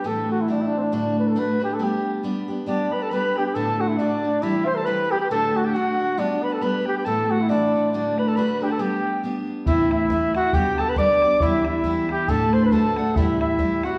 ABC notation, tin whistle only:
X:1
M:2/4
L:1/16
Q:"Swing" 1/4=137
K:G
V:1 name="Tin whistle"
z8 | z8 | z8 | d2 b a b2 g g |
a2 f2 d4 | e2 c' a b2 g g | a3 g f4 | d2 b a b2 g g |
a2 f2 d4 | d2 b a b2 g a | g4 z4 | e2 e2 e2 f2 |
g2 a b d'4 | e2 e4 g2 | a2 c' b a2 f2 | e2 e4 f2 |]